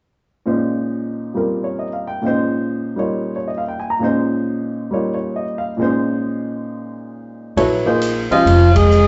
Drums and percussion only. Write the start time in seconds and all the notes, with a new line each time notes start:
7.57 ride
8.01 hi-hat pedal, ride
8.32 ride
8.47 ride
8.76 kick, ride
8.91 hi-hat pedal